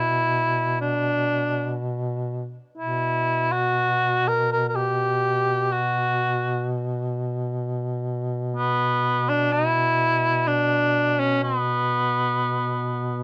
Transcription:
Already playing: duduk B2, cor anglais E4
0.81 cor anglais D4
2.78 duduk B2, cor anglais E4
3.52 cor anglais F#4
4.28 cor anglais A#4
4.52 cor anglais A#4
4.69 cor anglais A#4
4.76 cor anglais G4
5.72 cor anglais F#4
8.56 cor anglais B3
9.29 cor anglais D4
9.52 cor anglais E4
10.47 cor anglais D4
11.20 cor anglais C#4
11.43 cor anglais B3

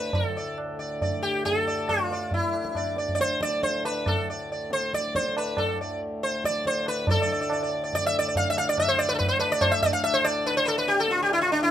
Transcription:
Already playing: harmonium D2 A2, sitar B4
0.13 harmonium D2 A2, sitar A4, tabla tin, tabla ge
0.37 sitar D5
0.58 tabla na
0.79 sitar D5
1.01 sitar D5, tabla tin, tabla ge
1.23 sitar G4
1.45 sitar A4, tabla tin, tabla ge
1.67 sitar D5
1.89 sitar F4, tabla na, tabla ge
2.11 sitar D5, tabla te
2.31 sitar E4, tabla tin, tabla ge
2.53 tabla na
2.65 tabla ke
2.75 sitar D5, tabla na, tabla ge
2.96 sitar D5, tabla te
3.09 tabla ge
3.15 sitar D5
3.20 sitar C5, tabla te
3.41 sitar D5, tabla ke
3.63 sitar C5, tabla ke
3.85 sitar B4, tabla na
4.06 sitar A4, tabla na, tabla ge
4.30 sitar D5
4.52 sitar D5
4.71 sitar C5, tabla te
4.93 sitar D5, tabla ke
5.15 sitar C5, tabla ke
5.37 sitar B4, tabla na
5.57 sitar A4, tabla na, tabla ge
5.81 sitar D5
6.23 sitar C5, tabla te
6.44 sitar D5, tabla ke
6.66 sitar C5, tabla ke
6.86 sitar B4, tabla na
7.07 harmonium D2 A2, sitar A4 D5, tabla tin, tabla ge
7.22 sitar D5
7.32 sitar D5
7.41 sitar D5
7.50 sitar D5, tabla na
7.63 sitar D5
7.84 sitar D5
7.93 sitar D5, tabla tin, tabla ge
8.06 sitar E5
8.19 sitar D5
8.28 sitar D5
8.35 sitar F5, tabla tin, tabla ge
8.50 sitar E5
8.57 sitar F5, tabla na
8.69 sitar D5
8.77 sitar E5, tabla na, tabla ge
8.88 sitar C5
8.99 sitar D5
9.09 sitar B4
9.15 sitar A4
9.19 sitar B4, tabla tin, tabla ge
9.28 sitar C5
9.40 sitar B4, tabla na
9.52 sitar D5
9.61 sitar C5, tabla na, tabla ge
9.71 sitar E5
9.82 sitar D5, tabla ge
9.93 sitar F5
10.04 sitar E5, tabla na
10.14 sitar C5
10.24 sitar D5, tabla na
10.46 sitar B4, tabla tin
10.57 sitar C5
10.65 sitar A4 B4, tabla na
10.78 sitar B4
10.88 sitar G4, tabla te
11.00 sitar A4
11.08 sitar F4, tabla te
11.23 sitar G4
11.29 sitar E4, tabla na
11.41 sitar F4
11.52 sitar D4
11.63 sitar E4

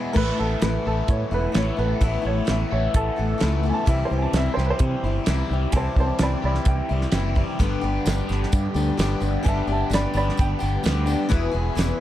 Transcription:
Already playing: overdriven electric guitar E2 B2 E3 B3 E4 G#4, steel-string acoustic guitar E3 G#3 B3 E4
0.13 fingered electric bass A1, steel-string acoustic guitar A2 E3 A3 B3 E4, upright piano A#4, kick, crash
0.17 overdriven electric guitar A4, upright piano B4
0.37 fingered electric bass A1, steel-string acoustic guitar A3 B3 E4, upright piano A4
0.60 fingered electric bass A1, steel-string acoustic guitar E3 A3 B3 E4, upright piano B4, snare, closed hi-hat
0.85 fingered electric bass A1, overdriven electric guitar A2 E3 A3 B3 A4, upright piano A4
1.08 fingered electric bass A2, upright piano C#5, kick, closed hi-hat
1.31 fingered electric bass E1, steel-string acoustic guitar A3 B3 E4, upright piano B4
1.52 fingered electric bass A1, overdriven electric guitar A2, steel-string acoustic guitar E3 A3 B3 E4, snare, closed hi-hat
1.56 overdriven electric guitar A4, upright piano C#5
1.77 fingered electric bass A1, steel-string acoustic guitar A3 B3 E4, upright piano B4
2.01 fingered electric bass A1, steel-string acoustic guitar A2 E3 A3 B3 E4, overdriven electric guitar A4, upright piano E5, kick, closed hi-hat
2.22 fingered electric bass A1, steel-string acoustic guitar A3 B3 E4
2.27 upright piano C#5
2.45 fingered electric bass A1, steel-string acoustic guitar E3 A3 B3 E4, snare, closed hi-hat
2.51 upright piano E5
2.71 fingered electric bass A1, overdriven electric guitar A2 E3 A3 B3 A4, upright piano C#5
2.94 fingered electric bass A1, upright piano A4, kick, closed hi-hat
3.16 fingered electric bass A1, steel-string acoustic guitar A3 B3 E4
3.38 overdriven electric guitar A2, steel-string acoustic guitar E3 A3 B3 E4, snare, closed hi-hat
3.42 fingered electric bass C#2, overdriven electric guitar A4
3.63 steel-string acoustic guitar A3 B3 E4
3.69 upright piano G#5
3.74 upright piano A5
3.86 fingered electric bass C2, steel-string acoustic guitar C3 E3 G3 C4 E4, overdriven electric guitar G4, upright piano E5, kick, closed hi-hat
4.05 upright piano C5
4.10 fingered electric bass C2, steel-string acoustic guitar G3 C4 E4
4.18 upright piano G#5
4.22 upright piano A5
4.33 fingered electric bass C2, steel-string acoustic guitar E3 G3 C4 E4, upright piano E5, snare, closed hi-hat
4.54 fingered electric bass C2, overdriven electric guitar E4 G4, upright piano C5
4.58 overdriven electric guitar C3 E3 G3, snare
4.66 upright piano B4
4.70 upright piano C5
4.79 fingered electric bass C3, kick, closed hi-hat
5.03 fingered electric bass G1, steel-string acoustic guitar G3 C4 E4
5.24 fingered electric bass C2, overdriven electric guitar C3 G4, steel-string acoustic guitar E3 G3, snare, closed hi-hat
5.28 steel-string acoustic guitar C4 E4
5.50 fingered electric bass C2, steel-string acoustic guitar G3 C4 E4
5.72 fingered electric bass C2, steel-string acoustic guitar C3 E3 G3 C4 E4, overdriven electric guitar G4, upright piano G#5, kick, closed hi-hat
5.76 upright piano C5 A5
5.96 fingered electric bass C2, steel-string acoustic guitar G3 C4 E4, upright piano C5 A5, kick
6.19 fingered electric bass C2, steel-string acoustic guitar E3 G3 C4 E4, upright piano D5, snare, closed hi-hat
6.23 upright piano B5
6.42 fingered electric bass C2, overdriven electric guitar C3 E3 G3 E4 G4, upright piano D5 B5
6.55 snare
6.65 fingered electric bass C2, upright piano G5, kick, closed hi-hat
6.89 fingered electric bass C2, steel-string acoustic guitar G3 C4 E4
7.01 snare
7.11 fingered electric bass F#1, overdriven electric guitar C3 G4, steel-string acoustic guitar E3 G3 C4 E4, snare, closed hi-hat
7.35 steel-string acoustic guitar G3 C4 E4, kick
7.59 fingered electric bass G1, steel-string acoustic guitar G2 D3 G3 B3 D4 G4, tonewheel organ G4 B4 D5 B5, kick, closed hi-hat
7.81 fingered electric bass G1, steel-string acoustic guitar G3 B3 D4 G4
8.05 fingered electric bass G1, steel-string acoustic guitar G3 B3 D4 G4, snare, closed hi-hat, tambourine
8.27 fingered electric bass G1, overdriven electric guitar G2 D3 G3 B3 D4 G4, tambourine
8.31 snare
8.43 snare
8.52 fingered electric bass G2, kick, closed hi-hat, tambourine
8.74 fingered electric bass D2, steel-string acoustic guitar G3 B3 D4 G4, tambourine
8.97 fingered electric bass G1, overdriven electric guitar G2 D3, steel-string acoustic guitar G3 B3 D4 G4, snare, closed hi-hat, tambourine
9.20 fingered electric bass G1, steel-string acoustic guitar G3 B3 D4 G4, tambourine
9.43 fingered electric bass G1, steel-string acoustic guitar G2 D3 G3 B3 D4 G4, upright piano G#5, kick, closed hi-hat
9.48 upright piano E5 A5
9.67 fingered electric bass G1, steel-string acoustic guitar G3 B3 D4 G4
9.72 upright piano E5 A5
9.90 fingered electric bass G1, steel-string acoustic guitar G3 B3 D4 G4, closed hi-hat, tambourine
9.94 upright piano D5 B5, snare
10.14 fingered electric bass G1, overdriven electric guitar G2 D3 G3 B3 D4 G4, upright piano D5, tambourine
10.18 upright piano B5
10.29 snare
10.37 fingered electric bass G1, upright piano G5, kick, closed hi-hat, tambourine
10.59 fingered electric bass G1, steel-string acoustic guitar G3 B3 D4 G4, tambourine
10.83 fingered electric bass D2, overdriven electric guitar G2 D3, steel-string acoustic guitar G3 B3 D4 G4, snare, closed hi-hat, tambourine
11.06 steel-string acoustic guitar G3 B3 D4 G4, tambourine
11.29 fingered electric bass E1, steel-string acoustic guitar E2 B2 E3 B3 E4 G#4, tonewheel organ G#4 B4 E5, kick, closed hi-hat
11.51 fingered electric bass E1, steel-string acoustic guitar E3 B3 E4 G#4
11.75 fingered electric bass E1, steel-string acoustic guitar E3 B3 E4 G#4, snare, closed hi-hat, tambourine

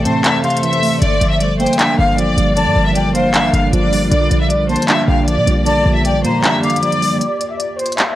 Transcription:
Already playing: tine electric piano C3 E3 A3 C4 C5, ambient pad A3 A4 C5 E5
0.05 808-style bass A2, tine electric piano C4, violin section C5, flute A5, closed hi-hat
0.24 tine electric piano C5, violin section E5, clap, closed hi-hat
0.44 tine electric piano C3, violin section F5, flute C6, closed hi-hat
0.50 closed hi-hat
0.57 closed hi-hat
0.63 tine electric piano E3, violin section E5, closed hi-hat
0.73 closed hi-hat
0.82 tine electric piano A3, open hi-hat
1.02 808-style bass G1, tine electric piano D3, ambient pad G3 D4 F4 A#4, violin section D5, closed hi-hat
1.21 808-style bass G1, tine electric piano F3, closed hi-hat
1.31 violin section E5
1.41 tine electric piano G3, violin section D5, closed hi-hat
1.60 tine electric piano A#3, violin section C5, flute G5, closed hi-hat
1.66 closed hi-hat
1.73 closed hi-hat
1.79 tine electric piano D4, violin section E5, clap, closed hi-hat
1.99 808-style bass G1, tine electric piano D3, violin section F5, flute F5
2.18 tine electric piano F3, violin section D5, closed hi-hat
2.37 808-style bass G1, tine electric piano G3, closed hi-hat
2.57 tine electric piano D3, violin section D5, flute A5, closed hi-hat
2.66 808-style bass G2
2.76 808-style bass G1, tine electric piano F3
2.86 violin section E5
2.95 tine electric piano G3, violin section D5, flute G5, closed hi-hat
3.15 tine electric piano A#3, violin section C5, flute F5, closed hi-hat
3.34 tine electric piano D4, violin section E5, clap, closed hi-hat
3.53 808-style bass G1, tine electric piano D3, violin section F5, closed hi-hat
3.73 808-style bass G1, tine electric piano F3, violin section D5, closed hi-hat
3.92 tine electric piano G3, open hi-hat
4.12 808-style bass A#1, tine electric piano D3, ambient pad A#3 G4 D5, violin section D5, closed hi-hat
4.31 808-style bass A#1, tine electric piano F3, closed hi-hat
4.41 violin section E5
4.50 tine electric piano G3, violin section D5, closed hi-hat
4.69 tine electric piano A#3, violin section C5, flute A5, closed hi-hat
4.76 closed hi-hat
4.82 closed hi-hat
4.89 tine electric piano D4, violin section E5, clap, closed hi-hat
5.08 808-style bass A#1, tine electric piano D3, violin section F5, flute G5
5.28 tine electric piano F3, violin section D5, closed hi-hat
5.37 808-style bass A#2
5.47 808-style bass A#1, tine electric piano G3, closed hi-hat
5.66 tine electric piano D3, violin section D5, flute A5, closed hi-hat
5.86 808-style bass A#1, tine electric piano F3
5.95 violin section E5
6.05 tine electric piano G3, violin section D5, flute G5, closed hi-hat
6.24 808-style bass A#2, tine electric piano A#3, violin section C5, flute A#5, closed hi-hat
6.43 tine electric piano D4, violin section E5, clap, closed hi-hat
6.63 tine electric piano D3, violin section F5, flute D6, closed hi-hat
6.70 closed hi-hat
6.76 closed hi-hat
6.82 tine electric piano F3, violin section D5, closed hi-hat
6.92 closed hi-hat
7.02 tine electric piano G3, open hi-hat
7.21 violin section D5, closed hi-hat
7.41 closed hi-hat
7.51 violin section E5
7.60 violin section D5, closed hi-hat
7.79 violin section C5, closed hi-hat
7.86 closed hi-hat
7.92 closed hi-hat
7.98 violin section E5, clap, closed hi-hat

